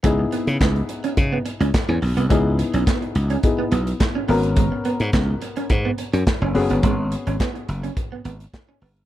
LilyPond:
<<
  \new Staff \with { instrumentName = "Grand piano" } { \time 4/4 \key cis \dorian \tempo 4 = 106 <b dis' e' gis'>1 | <b dis' e' gis'>2 <b dis' e' gis'>4. <b cis' fis' ais'>8~ | <b cis' fis' ais'>2.~ <b cis' fis' ais'>8 <b cis' fis' gis'>8~ | <b cis' fis' gis'>2.~ <b cis' fis' gis'>8 r8 | }
  \new Staff \with { instrumentName = "Clean electric guitar" } { \time 4/4 \key cis \dorian cis'16 r16 b16 r16 b16 r8 cis'16 r16 b16 r16 cis'16 r16 cis'16 r16 b16 | cis'16 r8 cis'16 b16 r8 cis'16 r16 b16 b16 r8 cis'16 b16 r16 | gis16 r16 b16 r16 b16 r8 cis'16 r16 b16 r16 cis'16 r16 cis'16 r16 b16 | gis16 r8 cis'16 b16 r8 cis'16 r16 b16 b16 r8 cis'16 b16 r16 | }
  \new Staff \with { instrumentName = "Slap bass" } { \clef bass \time 4/4 \key cis \dorian cis,8 r16 cis16 cis,8 r8 cis8 r16 cis,16 r16 e,16 b,,16 bis,,16 | cis,8. b,,16 r8 cis,8 r8 b,,8 r8 gis,,8~ | gis,,8 r16 gis,16 cis,8 r8 gis,8 r16 fis,16 r16 fis,,16 fis,,16 g,,16 | gis,,8. gis,,16 r8 fis,,8 r8 gis,,8 r8 g,,8 | }
  \new DrumStaff \with { instrumentName = "Drums" } \drummode { \time 4/4 <hh bd>8 hh16 hh16 <hc hh bd sn>16 hh16 hh16 hh16 <hh bd>8 hh16 hh16 <hc hh bd sn>16 hh16 hho16 hh16 | <hh bd>8 hh16 hh16 <hc hh bd sn>16 hh16 hh16 hh16 <hh bd>8 hh16 hh16 <hc hh bd sn>8 hho16 hh16 | <hh bd>8 hh16 hh16 <hc hh bd sn>8 hh16 hh16 <hh bd>8 hh16 hh16 <hc hh bd sn>8 hho16 hh16 | <hh bd>8 hh16 hh16 <hc hh bd sn>16 hh16 hh16 hh16 <hh bd>8 hh16 hh16 <hc hh bd sn>8 hho16 hh16 | }
>>